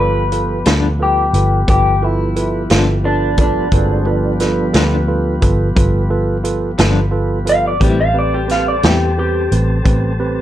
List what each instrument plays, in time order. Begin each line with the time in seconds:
Already playing: fingered electric bass G1, tonewheel organ F3 G3 B3
0.00 tine electric piano F4 A4 B4, clean electric guitar B4
0.32 tine electric piano F4 A4 B4, closed hi-hat
0.66 fingered electric bass D2, clean electric guitar G2 F3 B3 D4, tine electric piano F4 A4 B4, snare, closed hi-hat
0.99 tine electric piano F4 A4 B4, clean electric guitar G4
1.33 fingered electric bass G1, tine electric piano F4 A4 B4, closed hi-hat
1.68 fingered electric bass G1, tine electric piano F4 A4 B4, clean electric guitar G4, kick, closed hi-hat
2.02 clean electric guitar E4, tine electric piano F4 A4 B4
2.36 tine electric piano F4 A4 B4, closed hi-hat
2.70 fingered electric bass G1, clean electric guitar G2 F3 B3 D4, tine electric piano F4 A4 B4, snare, closed hi-hat
3.04 clean electric guitar D4, tine electric piano F4 A4 B4
3.38 clean electric guitar D4, tine electric piano F4 A4 B4, kick, closed hi-hat
3.72 fingered electric bass G1, tonewheel organ F#3 G#3 C4, tine electric piano F4 A4 B4, kick, closed hi-hat
4.05 tonewheel organ F3 G3 B3, tine electric piano F4 A4 B4
4.40 tine electric piano F4 A4 B4, snare, closed hi-hat
4.73 fingered electric bass D2, clean electric guitar G2 F3 B3 D4, tine electric piano F4 A4 B4, snare, closed hi-hat
5.08 tine electric piano F4 A4 B4
5.41 fingered electric bass G1, tine electric piano F4 A4 B4, kick, closed hi-hat
5.76 fingered electric bass G1, tine electric piano F4 A4 B4, kick, closed hi-hat
6.10 tine electric piano F4 A4 B4
6.44 tine electric piano F4 A4 B4, closed hi-hat
6.78 fingered electric bass G1, clean electric guitar G2 F3 B3 D4, tine electric piano F4 A4 B4, snare, closed hi-hat
7.11 tine electric piano F4 A4 B4
7.45 tine electric piano F4 A4 B4, closed hi-hat
7.49 clean electric guitar F5
7.68 clean electric guitar D5
7.80 fingered electric bass A1, clean electric guitar A2 G3 C4 E4 G4, tonewheel organ G3 C4 A4, tine electric piano C4 G4 B4, kick, closed hi-hat
8.00 clean electric guitar F5
8.14 tine electric piano C4 G4 B4
8.19 clean electric guitar D5
8.34 clean electric guitar G4
8.48 tine electric piano C4 G4 B4, clean electric guitar F5, snare, closed hi-hat
8.68 clean electric guitar D5
8.83 fingered electric bass E2, clean electric guitar A2 G3 C4 E4 G4, tine electric piano C4 G4 B4, snare, closed hi-hat
9.18 tine electric piano C4 G4 B4, clean electric guitar G4
9.51 fingered electric bass A1, tine electric piano C4 G4 B4, closed hi-hat
9.85 fingered electric bass A1, tine electric piano C4 G4 B4, kick, closed hi-hat
10.20 tine electric piano C4 G4 B4